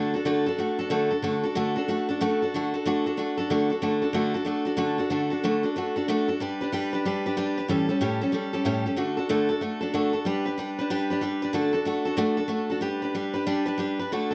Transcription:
Already playing: D3 A3 D4 F#4 A4
0.14 D4 F#4 A4
0.25 D3 A3 D4 F#4 A4
0.46 D4 F#4 A4
0.58 A3 D4 F#4 A4
0.79 D4 F#4 A4
0.90 D3 A3 D4 F#4 A4
1.10 D4 F#4 A4
1.22 D3 A3 D4 F#4 A4
1.43 D4 F#4 A4
1.55 D3 A3 D4 F#4 A4
1.76 D4 F#4 A4
1.88 A3 D4 F#4 A4
2.09 D4 F#4 A4
2.21 D3 A3 D4 F#4 A4
2.42 D4 F#4 A4
2.54 D3 A3 D4 F#4 A4
2.74 D4 F#4 A4
2.85 D3 A3 D4 F#4 A4
3.06 D4 F#4 A4
3.17 A3 D4 F#4 A4
3.37 D4 F#4 A4
3.50 D3 A3 D4 F#4 A4
3.70 D4 F#4 A4
3.82 D3 A3 D4 F#4 A4
4.02 D4 F#4 A4
4.13 D3 A3 D4 F#4 A4
4.34 D4 F#4 A4
4.45 A3 D4 F#4 A4
4.65 D4 F#4 A4
4.77 D3 A3 D4 F#4 A4
4.98 D4 F#4 A4
5.10 D3 A3 D4 F#4 A4
5.30 D4 F#4 A4
5.44 D3 A3 D4 F#4 A4
5.63 D4 F#4 A4
5.76 A3 D4 F#4 A4
5.96 D4 F#4 A4
6.08 D3 A3 D4 F#4 A4
6.28 D4 F#4 A4
6.40 G3 D4 G4 B4
6.61 D4 G4 B4
6.72 G3 D4 G4 B4
6.93 D4 G4 B4
7.05 G3 D4 G4 B4
7.26 D4 G4 B4
7.37 G3 D4 G4 B4
7.57 D4 G4 B4
7.68 A2 E3 G3 C#4 G4 A4
7.89 G3 C#4 G4 A4
8.01 A2 E3 G3 C#4 G4 A4
8.21 G3 C#4 G4 A4
8.32 G3 C#4 G4 A4
8.53 G3 C#4 G4 A4
8.65 A2 E3 G3 C#4 G4 A4
8.86 G3 C#4 G4 A4
8.96 D3 A3 D4 F#4 A4
9.17 D4 F#4 A4
9.29 D3 A3 D4 F#4 A4
9.49 D4 F#4 A4
9.61 A3 D4 F#4 A4
9.81 D4 F#4 A4
9.93 D3 A3 D4 F#4 A4
10.13 D4 F#4 A4
10.25 G3 D4 G4 B4
10.46 D4 G4 B4
10.58 G3 D4 G4 B4
10.79 D4 G4 B4
10.90 G3 D4 G4 B4
11.10 D4 G4 B4
11.21 G3 D4 G4 B4
11.42 D4 G4 B4
11.53 D3 A3 D4 F#4 A4
11.73 D4 F#4 A4
11.85 A3 D4 F#4 A4
12.05 D4 F#4 A4
12.17 D3 A3 D4 F#4 A4
12.37 D4 F#4 A4
12.48 A3 D4 F#4 A4
12.70 D4 F#4 A4
12.81 G3 D4 G4 B4
13.02 D4 G4 B4
13.15 G3 D4 G4 B4
13.34 D4 G4 B4
13.46 G3 D4 G4 B4
13.66 D4 G4 B4
13.78 G3 D4 G4 B4
13.99 D4 G4 B4
14.12 D3 A3 D4 F#4 A4
14.31 A4

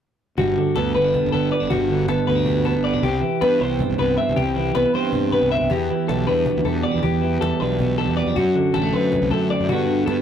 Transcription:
0.38 G1 G2 F#4, cajon bass
0.57 D3
0.76 D2 B3 A4, cajon slap
0.94 G1 B3 B4
1.04 D4
1.14 G2, cajon bass, cajon slap
1.24 F#1
1.32 G1 B3 A4, cajon bass
1.52 B3 D5, cajon slap
1.60 G1 D4
1.69 G1 G2 F#4, cajon bass
1.89 D3, cajon slap
2.08 G1 B3 A4, cajon slap
2.27 D2 B3 B4
2.36 D4
2.46 G2, cajon bass
2.65 B3 A4, cajon bass
2.75 G1
2.84 B3 D5, cajon slap
2.94 B1 D4
3.03 C2 C3 G4, cajon bass
3.21 E3, cajon slap
3.41 G2 B3 B4, cajon slap
3.61 C2 C4 C5
3.79 G2, cajon bass
3.89 B1
3.98 C2 B3 B4, cajon bass
4.18 C4 E5
4.28 C2
4.36 C2 C3 G4, cajon bass
4.56 E3
4.75 C2 B3 B4, cajon slap
4.94 G2 C4 C5
5.12 G2, cajon bass
5.32 B3 B4, cajon bass
5.42 C2
5.52 C4 E5
5.61 C2
5.70 E2 G4, cajon bass
5.90 E3, cajon slap
6.08 B1 G3 A4, cajon slap
6.27 E2 D4 B4
6.46 B2, cajon bass
6.57 D2
6.65 E2 G3 A4, cajon bass
6.83 B3 D5
6.91 E2 D4
7.02 E2 G4, cajon bass
7.21 E3
7.41 E2 G3 A4, cajon slap
7.60 B1 D4 B4, cajon slap
7.79 B2, cajon bass
7.98 G3 A4, cajon bass, cajon slap
8.08 E2
8.17 B3 D5
8.26 F2 D4
8.36 F#2 F#4, cajon bass
8.54 D3, cajon slap
8.74 A1 G3 A4, cajon slap
8.82 A3
8.93 F#2 C4 B4
9.12 F#2, cajon bass
9.22 C2
9.31 F#2 A3 A4, cajon bass
9.50 C4 D5, cajon slap
9.60 F#2
9.69 G2 D3 B3 D4 F#4, cajon bass
9.88 D3, cajon slap
10.06 G2 B3 A4, cajon slap

